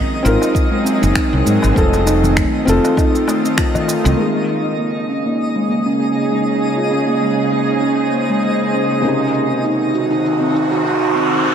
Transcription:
Already playing: F#3 C4 D#4 F4 G#4 A#4 D#5
0.23 G#1 C4 D#4 F4 A#4, cabasa
0.41 C4, darbuka tek, cabasa
0.55 kick, cabasa
0.71 G#3
0.85 C4, cabasa
1.02 F#1 D#4, cabasa
1.15 C4, finger snap, kick, cabasa
1.33 C2, darbuka ka
1.46 G#2 G#3, cabasa
1.62 G#1, darbuka ka, darbuka tek, cabasa
1.74 F1 D#3 A3 C4 F4 A4, kick, cabasa
1.93 F4, darbuka tek, cabasa
2.06 D#4, darbuka ka, cabasa
2.23 C4, darbuka dum, cabasa
2.36 A3, finger snap, kick, cabasa
2.65 F1 C4 F4 A4, cabasa
2.85 darbuka tek, cabasa
2.97 D#4, kick, darbuka ka, darbuka tek, cabasa
3.15 cabasa
3.27 A3, darbuka ka, darbuka tek, cabasa
3.44 C4, cabasa
3.57 F4, finger snap, kick, cabasa
3.75 darbuka ka, darbuka dum, cabasa
3.87 F4, darbuka tek, cabasa
4.04 C2 C4, darbuka ka, cabasa
4.17 C#3 G#3 A#3 D#4 G#4 D#5, cabasa
4.50 cabasa
4.67 cabasa
4.78 A#3, cabasa
5.09 C#4, cabasa
5.26 A#3, cabasa
5.41 cabasa
5.55 G#3
5.69 A#3, cabasa
5.86 C#4, cabasa
6.00 A#3, cabasa
6.31 G#3, cabasa
6.48 cabasa
6.61 C5, cabasa
6.77 F4
6.91 C#4, cabasa
7.07 A#3, cabasa
7.22 G#3, cabasa
7.52 A#3, cabasa
7.69 cabasa
7.82 C#4, cabasa
8.13 A#3, cabasa
8.29 G#3, cabasa
8.43 A#3, cabasa
8.73 C#4, cabasa
8.90 A#3, cabasa
9.01 C3 D#3 A#3 C4 D#4 F#4, riser, cabasa
9.05 G#4
9.34 cabasa
9.51 cabasa
9.64 D#4, cabasa
9.94 F#4, cabasa
10.11 D#4, cabasa
10.26 cabasa
10.41 C4
10.55 D#4, cabasa
10.71 F#4, cabasa
10.85 D#4, cabasa
11.15 C4, cabasa
11.34 cabasa
11.47 cabasa

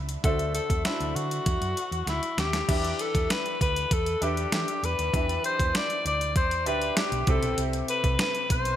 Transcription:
Already playing: C#2 D4 F#4 C5 E5
0.09 closed hi-hat
0.24 D2 D3 D4 F#4 A4 C5 E5, kick, closed hi-hat
0.39 closed hi-hat
0.55 A4, closed hi-hat
0.70 E2, kick, closed hi-hat
0.85 D4 E4 F#4 C5 E5, snare, closed hi-hat
1.00 D2, closed hi-hat
1.16 D3 F#4, closed hi-hat
1.31 closed hi-hat
1.46 E2, kick, closed hi-hat
1.61 F#2, closed hi-hat
1.77 closed hi-hat
1.91 E2, closed hi-hat
2.06 D2 E4, snare, closed hi-hat
2.23 closed hi-hat
2.37 D#2 G4, snare, closed hi-hat
2.53 snare, closed hi-hat
2.68 E2 E3 D4 G4 B4 E5, kick, closed hi-hat, crash
2.84 closed hi-hat
2.99 A4, closed hi-hat
3.15 E2, kick, closed hi-hat
3.30 B4, snare, closed hi-hat
3.46 closed hi-hat
3.61 D2 B4, kick, closed hi-hat
3.76 closed hi-hat
3.91 E2 A4, kick, closed hi-hat
4.06 closed hi-hat
4.21 E2 D4 G4 B4 E5, closed hi-hat
4.37 closed hi-hat
4.52 E3 G4, snare, closed hi-hat
4.68 closed hi-hat
4.83 E2 B4, closed hi-hat
4.99 D#2, closed hi-hat
5.13 E2 E3 D4 G4 E5 B5, kick, closed hi-hat
5.29 closed hi-hat
5.44 C5, closed hi-hat
5.60 E2, kick, closed hi-hat
5.75 D5, snare, closed hi-hat
5.90 closed hi-hat
6.05 D2 D5, closed hi-hat
6.21 closed hi-hat
6.36 E2 C5, kick, closed hi-hat
6.51 closed hi-hat
6.66 D2 D4 G4 B4 E5, closed hi-hat
6.82 closed hi-hat
6.97 G4, snare, closed hi-hat
7.12 B1, closed hi-hat
7.27 C2 C3 C4 E4 G4 A4 E5, kick, closed hi-hat
7.42 B1, closed hi-hat
7.58 C2, closed hi-hat
7.73 closed hi-hat
7.88 B4, closed hi-hat
8.04 C2, kick, closed hi-hat
8.19 B4, snare, closed hi-hat
8.35 closed hi-hat
8.50 B1 C5, kick, closed hi-hat
8.65 closed hi-hat

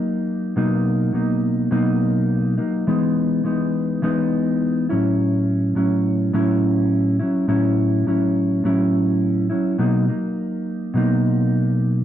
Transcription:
Already playing: F#3 A#3 D#4
0.56 B2 F#3 A#3 D#4
1.13 B2 F#3 A#3 D#4
1.71 B2 F#3 A#3 D#4
2.58 F#3 A#3 D#4
2.87 E3 G#3 B3 D#4
3.44 E3 G#3 B3 D#4
4.02 E3 G#3 B3 D#4
4.89 A2 F#3 C#4 E4
5.75 A2 F#3 C#4 E4
6.33 A2 F#3 C#4 E4
7.19 F#3 C#4 E4
7.48 A2 F#3 C#4 E4
8.06 A2 F#3 C#4 E4
8.64 A2 F#3 C#4 E4
9.50 F#3 C#4 E4
9.78 B2 F#3 A#3 D#4
10.08 F#3 A#3 D#4
10.94 B2 F#3 A#3 D#4

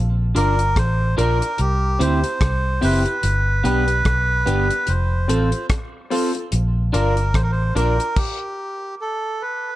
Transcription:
Already playing: A#1
0.35 G1 D4 F4 A#4 D5, closed hi-hat
0.59 closed hi-hat
0.76 A1 C5, kick, cross-stick, closed hi-hat
1.17 A#1 D4 F4 A#4 D5, closed hi-hat
1.42 muted clean electric guitar stroke, closed hi-hat
1.58 C2 G4, closed hi-hat
1.99 D2 C4 E4 G4 C5, closed hi-hat
2.24 E4 G4, closed hi-hat
2.41 C2, kick, cross-stick, closed hi-hat
2.81 F#1 C4 E4 G4 B4 C5, open hi-hat
3.06 E4 G4, muted clean electric guitar stroke, closed hi-hat
3.23 G1, closed hi-hat
3.63 B1 B3 D4 G4 B4, closed hi-hat
3.88 closed hi-hat
4.05 B1, kick, cross-stick, closed hi-hat
4.46 G1 B3 D4 G4 B4, closed hi-hat
4.70 muted clean electric guitar stroke, closed hi-hat
4.87 F1 C5, closed hi-hat
5.28 A1 C4 F4 A4 C5, closed hi-hat
5.52 F4 A4, closed hi-hat
5.70 kick, cross-stick, closed hi-hat
6.10 C4 F4 A4 C5, open hi-hat
6.35 F4 A4, muted clean electric guitar stroke, closed hi-hat
6.52 A#1, closed hi-hat
6.92 G1 D4 F4 A#4 D5, closed hi-hat
7.17 closed hi-hat
7.34 A1 C5, kick, cross-stick, closed hi-hat
7.44 A#4
7.52 C5
7.75 A#1 D4 F4 A#4 D5, closed hi-hat
7.99 muted clean electric guitar stroke, closed hi-hat
8.16 G4, kick, crash
9.01 A4
9.42 B4

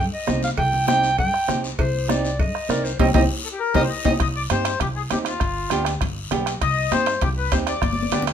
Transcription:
0.14 D#5
0.27 C2 C4 D#4 G4, bombo rim, high conga, low timbale, short guiro
0.43 F5, high conga, short guiro
0.57 C2 G5, bombo low, cowbell, long guiro
0.73 high conga, low conga
0.87 C4 D#4 G4 G5, bombo rim, high conga, short guiro
1.03 short guiro
1.18 G2 G5, bombo low, cowbell, high conga, long guiro
1.34 bombo rim
1.48 C2 C4 D#4 G4, bombo rim, high conga, low conga, low timbale, short guiro
1.64 short guiro
1.79 C2 C5, bombo low, cowbell, long guiro
1.95 high conga
2.08 C4 D#4 G4 D5, bombo rim, high conga, short guiro
2.25 short guiro
2.39 G2 D#5, bombo low, cowbell, high conga, long guiro
2.55 bombo rim
2.69 C2 C4 D#4 A#4 D5, bombo rim, high conga, low timbale, short guiro
2.85 C5, short guiro
2.99 C2 C4 D#4 G4 D#5, bombo low, high conga, high timbale, long guiro
3.14 C2 C4 D#4 G4 D#5, bombo low, high conga, high timbale, long guiro
3.45 A4
3.52 G4
3.60 A#4
3.74 C2 C4 D#4 G4 D#5, bombo low, high conga, high timbale, long guiro
3.82 C5
3.89 D#5
4.05 C2 C4 D#4 G4 D#5, bombo low, high conga, high timbale, long guiro
4.20 C2 D#5, bombo low, bombo rim, high timbale, long guiro
4.36 D5
4.50 G2 C4 D#4 G4 C5, bombo rim, high conga, high timbale, short guiro
4.65 bombo rim, high timbale, short guiro
4.80 C2 G4, bombo low, bombo rim, low conga, high timbale, long guiro
4.96 G#4
5.10 D#2 C4 D#4 G4, bombo rim, high conga, high timbale, low timbale, short guiro
5.25 F4, bombo rim, high timbale, short guiro
5.40 G1, bombo low, bombo rim, high timbale, long guiro
5.70 D2 B3 D4 G4, bombo rim, high conga, high timbale, short guiro
5.85 bombo rim, high timbale, short guiro
6.01 G1, bombo low, bombo rim, low conga, high timbale, long guiro
6.31 B1 B3 D4 G4, bombo rim, high conga, low conga, high timbale, low timbale, short guiro
6.46 bombo rim, high timbale, short guiro
6.61 C2 D#5, bombo low, bombo rim, high timbale, long guiro
6.92 G2 C4 D#4 G4 C5, bombo rim, high conga, high timbale, short guiro
7.06 bombo rim, high timbale, short guiro
7.21 C2 G4, bombo low, bombo rim, low conga, high timbale, long guiro
7.38 B4
7.52 D#2 C4 D#4 G4 C5, bombo low, bombo rim, high conga, high timbale, low timbale, short guiro
7.67 D5, bombo rim, high timbale, short guiro
7.82 G1, bombo low, bombo rim, high conga, high timbale, long guiro
7.93 high conga
8.03 high conga
8.12 D2 B3 D4 G4, bombo rim, high conga, high timbale, short guiro
8.22 low conga
8.27 bombo rim, high timbale, short guiro

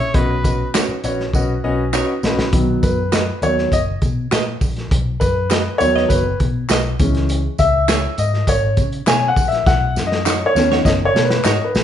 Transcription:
Already playing: C#5
0.00 A#1
0.14 B1 B2 C#4 F#4 B4 D#5, kick, closed hi-hat
0.44 C#4 F#4 B4 D#5, kick, closed hi-hat, tambourine
0.74 C#4 D#4 F#4 B4 C#5 D#5, snare, clap, closed hi-hat, tambourine
0.89 muted fingered electric bass stroke
1.04 A#1 C#4 F#4 B4 C#5 D#5, closed hi-hat, tambourine
1.20 snare
1.33 B1 C#4 F#4 B4 D#5 F#5, kick, tambourine
1.64 B1 C#4 F#4 B4 D#5 G#5
1.93 C#4 D#4 F#4 B4 C#5 D#5 A#5, clap, tambourine
2.23 A#1 C#4 F#4 B4 D#5 B5, snare, tambourine
2.37 A#1, snare
2.53 B1 D#3 F#3 B3, kick, closed hi-hat, tambourine
2.83 F#2 B4, kick, closed hi-hat, tambourine
3.12 F#4 B4 D#5, snare, clap, closed hi-hat, tambourine
3.42 D#2 D#3 F#3 B3 C#5, closed hi-hat, tambourine
3.58 snare
3.72 F#1 D#5, kick, closed hi-hat, tambourine
4.02 B2, kick, closed hi-hat, tambourine
4.32 A#2 F#4 B4 D#5, snare, clap, closed hi-hat, tambourine
4.61 A#1, kick, open hi-hat, tambourine
4.76 snare, closed hi-hat
4.91 B1, kick, closed hi-hat
5.20 F#2 B4, kick, closed hi-hat, tambourine
5.51 F#4 B4 D#5, snare, clap, closed hi-hat, tambourine
5.78 D#2 D#3 F#3 B3 C#5, closed hi-hat, tambourine
5.96 F#4 B4 D#5, snare
6.09 F#1 B4, kick, closed hi-hat, tambourine
6.40 B2, kick, closed hi-hat
6.70 B1 F#4 B4 D#5, snare, clap, closed hi-hat, tambourine
6.99 C#2 E3 G#3 C#4, kick, closed hi-hat, tambourine
7.14 snare, closed hi-hat
7.29 closed hi-hat, tambourine
7.58 C#2 E5, kick, closed hi-hat, tambourine
7.88 E4 G#4 C#5, snare, clap, closed hi-hat, tambourine
8.18 G#2 D#5, closed hi-hat, tambourine
8.34 snare
8.47 G#1 C#5, kick, closed hi-hat, tambourine
8.77 C#3, kick, closed hi-hat, tambourine
8.92 closed hi-hat
9.07 B2 E4 G#4 C#5 G#5, snare, clap, closed hi-hat, tambourine
9.28 F#5
9.36 A#1, kick, open hi-hat, tambourine
9.48 E5, closed hi-hat
9.53 snare
9.66 B1 F#5, kick, snare, tambourine
9.96 F#2, snare, tambourine
10.07 D#5
10.12 snare
10.26 D#4 F#4 C#5, snare, clap, tambourine
10.46 C#5
10.55 D#2 D#3 B3 C#4, snare, tambourine
10.72 D#4 F#4 C#5, snare
10.85 F#1 D#5, kick, snare, tambourine
11.05 C#5
11.15 B2, snare, tambourine
11.25 B4
11.30 snare
11.44 G#2 D#4 F#4 C#5 D#5, snare, clap, tambourine
11.64 B4
11.75 A#1, snare, tambourine

